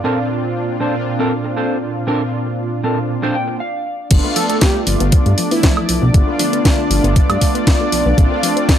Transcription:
Already playing: analog synth pad D4 D5
0.03 analog polysynth A#2 C4 D4 F4, clean electric guitar C4 D4 A4 A#4
0.29 muted clean electric guitar stroke
0.43 muted clean electric guitar stroke
0.79 analog polysynth A#2 C4 D4 F4, clean electric guitar C4 D4 A4 C5
1.05 muted clean electric guitar stroke
1.19 clean electric guitar C4 D4 A4 A#4
1.44 muted clean electric guitar stroke
1.56 clean electric guitar C4 D4 A4 C5
1.95 muted clean electric guitar stroke
2.06 analog polysynth A#2 C4 D4 F4, clean electric guitar C4 D4 A4 A#4
2.33 muted clean electric guitar stroke
2.46 muted clean electric guitar stroke
2.83 analog polysynth A#2 C4 D4 F4, clean electric guitar C4 D4 A4 A#4
3.09 muted clean electric guitar stroke
3.22 clean electric guitar C4 D4 A4 C5
3.34 clean electric guitar G5
3.48 muted clean electric guitar stroke
3.60 clean electric guitar F5
4.10 analog synth bass G1, synth arpeggio sound F3, analog polysynth A3 B3 D4 F4, analog synth pad D4 D5, kick, closed hi-hat, crash
4.24 synth arpeggio sound A3
4.36 synth arpeggio sound F3, analog synth lead A4, open hi-hat
4.50 synth arpeggio sound B3, analog synth lead A4, closed hi-hat
4.61 synth arpeggio sound F3, analog synth lead G4, kick, snare, closed hi-hat
4.75 synth arpeggio sound A3
4.87 analog synth bass G1, synth arpeggio sound F3, analog polysynth A3 B3 D4 F4, open hi-hat
5.00 analog synth bass G1, synth arpeggio sound B3, closed hi-hat
5.12 analog synth bass G2, synth arpeggio sound F3, kick, closed hi-hat
5.26 analog synth bass G2, synth arpeggio sound A3, closed hi-hat
5.37 synth arpeggio sound F3, analog polysynth F3 A3 B3 D4, open hi-hat
5.51 synth arpeggio sound B3, analog synth lead E4, open hi-hat
5.63 synth arpeggio sound F3, kick, snare, closed hi-hat
5.77 synth arpeggio sound A3, high woodblock
5.89 analog synth bass B1, synth arpeggio sound F3, open hi-hat
6.02 analog synth bass B1, synth arpeggio sound B3
6.13 analog synth bass G1, synth arpeggio sound F3, analog polysynth A3 B3 D4 F4, kick, closed hi-hat
6.27 synth arpeggio sound A3
6.39 synth arpeggio sound F3, analog synth lead D4, open hi-hat
6.53 synth arpeggio sound B3, closed hi-hat
6.65 synth arpeggio sound F3, analog synth lead D4, kick, snare, closed hi-hat
6.78 synth arpeggio sound A3
6.90 analog synth bass G1, synth arpeggio sound F3, analog polysynth A3 B3 D4 F4, open hi-hat
7.04 analog synth bass G1, synth arpeggio sound B3, closed hi-hat
7.16 synth arpeggio sound F3, kick, closed hi-hat
7.29 analog synth bass G2, synth arpeggio sound A3, closed hi-hat, high woodblock
7.40 synth arpeggio sound F3, analog polysynth A3 B3 D4 F4, kick, open hi-hat
7.55 synth arpeggio sound B3, closed hi-hat
7.67 synth arpeggio sound F3, kick, snare, closed hi-hat
7.80 synth arpeggio sound A3
7.92 analog synth bass B1, synth arpeggio sound F3, open hi-hat
8.06 analog synth bass B1, synth arpeggio sound B3
8.16 analog synth bass A#1, synth arpeggio sound F3, analog polysynth A3 C4 D4 F4, kick, closed hi-hat
8.31 synth arpeggio sound A#3
8.43 synth arpeggio sound F3, open hi-hat
8.56 synth arpeggio sound C4, closed hi-hat
8.68 synth arpeggio sound F3, kick, snare, closed hi-hat

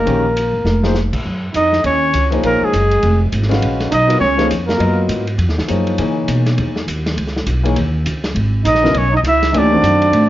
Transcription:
Already playing: trombone A#3, trumpet A#4
0.05 upright bass A#1, grand piano D#3 G#3 C#4 G4 A#4, ride
0.37 hi-hat pedal, ride
0.53 upright bass G#1
0.64 upright bass F1, snare
0.83 grand piano F3 A#3 D#4 G#4 C5, snare
0.95 snare, hi-hat pedal
1.13 upright bass A#2, kick, crash
1.25 upright bass F#2
1.54 upright bass F2, trombone D#4, trumpet D#5, hi-hat pedal, ride
1.73 snare
1.84 upright bass D#2, trombone C#4, trumpet C#5, ride
2.13 upright bass C#2, hi-hat pedal, ride
2.31 grand piano F3 A#3 D#4 G#4 C#5, ride
2.43 upright bass A#1, trombone A#3, trumpet A#4, ride
2.61 trombone G#3, trumpet G#4, muted upright bass stroke
2.73 upright bass F#1, hi-hat pedal, ride
2.91 ride
3.03 upright bass F1, ride
3.32 upright bass G#1, hi-hat pedal, ride
3.42 snare
3.49 grand piano G#3 C#4 F#4 B4 F5, snare, ride
3.62 upright bass A#1, ride
3.80 snare, ride
3.90 upright bass B1, trombone D#4, trumpet D#5, hi-hat pedal, ride
4.07 grand piano F#3 B3 F4 A#4 D#5, ride
4.19 upright bass C#2, trombone C#4, trumpet C#5
4.37 grand piano F3 A#3 D#4 G#4 C#5, snare, ride
4.50 upright bass F2, hi-hat pedal, ride
4.66 trombone A#3, trumpet A#4, snare
4.78 upright bass F#2, grand piano F#3 B3 F4 A#4 D#5, ride
5.08 upright bass G#2, hi-hat pedal, ride
5.27 ride
5.38 upright bass F2, ride
5.49 upright bass D#2, snare
5.58 upright bass C#2, snare
5.68 upright bass F#2, grand piano F3 A#3 D#4 G#4 C#5, hi-hat pedal, ride
5.87 ride
5.98 upright bass C#3, grand piano E3 A#3 D#4 G#4 C#5, ride
6.28 upright bass B2, hi-hat pedal, ride
6.46 snare, ride
6.58 upright bass E2, ride
6.76 snare
6.87 upright bass D#2, hi-hat pedal, ride
7.06 snare, ride
7.17 upright bass C#2, ride
7.27 snare
7.37 snare
7.47 upright bass B1, hi-hat pedal, ride
7.63 grand piano E3 A#3 D#4 G#4 C#5, ride
7.76 upright bass D#2, ride
8.06 upright bass C#2, hi-hat pedal, ride
8.24 snare, ride
8.35 upright bass G#1, ride
8.64 upright bass A#1, trombone D#4, trumpet D#5, hi-hat pedal, ride
8.75 snare
8.83 grand piano C#3 F#3 B3 E4 A#4, snare
8.94 upright bass B1, trombone C#4, trumpet C#5, ride
9.12 trombone D#4
9.17 trumpet D#5
9.23 upright bass C#2, trombone E4, hi-hat pedal, ride
9.28 trumpet E5
9.42 snare, ride
9.53 upright bass D2, grand piano E3 A#3 C#4 D#4 G4, trombone D4, ride
9.58 trumpet D5
9.71 grand piano D#3 A3 C4 D4 F#4
9.82 upright bass F#2, hi-hat pedal, ride
10.02 ride
10.12 upright bass A2, ride

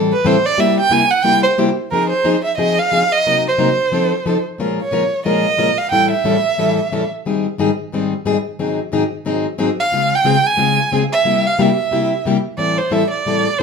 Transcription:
Already playing: steel-string acoustic guitar A2 E3 G3 C4 E4 A4
0.13 violin B4
0.25 steel-string acoustic guitar A2 E3 G3 C4 E4 A4, violin C5
0.46 violin D5
0.57 steel-string acoustic guitar C3 G3 A#3 E4 G4, violin E5
0.80 violin G5
0.90 steel-string acoustic guitar C3 G3 A#3 E4 G4, violin G#5
1.11 violin F#5
1.23 steel-string acoustic guitar C3 G3 A#3 E4 G4, violin G5
1.43 violin C5
1.58 steel-string acoustic guitar C3 G3 A#3 E4 G4
1.91 steel-string acoustic guitar F3 C4 D#4 G#4, violin A#4
2.10 violin C5
2.24 steel-string acoustic guitar F3 C4 D#4 G#4
2.44 violin E5
2.58 steel-string acoustic guitar F3 C4 D#4 G#4, violin D#5
2.79 violin F5
2.92 steel-string acoustic guitar F3 C4 D#4 G#4
3.12 violin D#5
3.26 steel-string acoustic guitar C3 F#3 A#3 D#4 A#4
3.49 violin C5
3.58 steel-string acoustic guitar C3 F#3 A#3 D#4 A#4
3.92 steel-string acoustic guitar F3 C4 D#4 A4
4.26 steel-string acoustic guitar F3 C4 D#4 A4
4.58 steel-string acoustic guitar A#2 F3 G#3 C#4 F4 A#4
4.82 violin C#5
4.91 steel-string acoustic guitar A#2 F3 G#3 C#4 F4 A#4
5.25 steel-string acoustic guitar A#2 F3 G#3 C#4 F4 A#4, violin D#5
5.58 steel-string acoustic guitar A#2 F3 G#3 C#4 F4 A#4
5.78 violin F5
5.92 steel-string acoustic guitar A2 E3 G3 C#4 E4 A4, violin G5
6.11 violin E5
6.24 steel-string acoustic guitar A2 E3 G3 C#4 E4 A4
6.58 steel-string acoustic guitar A2 E3 G3 C#4 E4 A4
6.92 steel-string acoustic guitar A2 E3 G3 C#4 E4 A4
7.25 steel-string acoustic guitar G#2 D#3 G3 C4 D#4 G#4
7.58 steel-string acoustic guitar G#2 D#3 G3 C4 D#4 G#4
7.92 steel-string acoustic guitar G#2 D#3 G3 C4 D#4 G#4
8.25 steel-string acoustic guitar G#2 D#3 G3 C4 D#4 G#4
8.59 steel-string acoustic guitar G#2 D#3 F#3 C4 D#4 G#4
8.92 steel-string acoustic guitar G#2 D#3 F#3 C4 D#4 G#4
9.25 steel-string acoustic guitar G#2 D#3 F#3 C4 D#4 G#4
9.58 steel-string acoustic guitar G#2 D#3 F#3 C4 D#4 G#4
9.80 violin F5
9.92 steel-string acoustic guitar C#3 G#3 C4 F4 G#4
10.15 violin G5
10.24 steel-string acoustic guitar C#3 G#3 C4 F4 G#4
10.47 violin G#5
10.57 steel-string acoustic guitar C#3 G#3 C4 F4 G#4
10.92 steel-string acoustic guitar C#3 G#3 C4 F4 G#4
11.12 violin E5
11.24 steel-string acoustic guitar C3 G3 A#3 E4 G4
11.47 violin F5
11.59 steel-string acoustic guitar C3 G3 A#3 E4 G4, violin E5
11.91 steel-string acoustic guitar C3 G3 A#3 E4 G4
12.25 steel-string acoustic guitar C3 G3 A#3 E4 G4
12.58 steel-string acoustic guitar A2 E3 G3 C4 E4 A4, violin D5
12.78 violin C5
12.91 steel-string acoustic guitar A2 E3 G3 C4 E4 A4, violin E5
13.11 violin D5
13.26 steel-string acoustic guitar A2 E3 G3 C4 E4 A4
13.59 steel-string acoustic guitar A2 E3 G3, violin C5

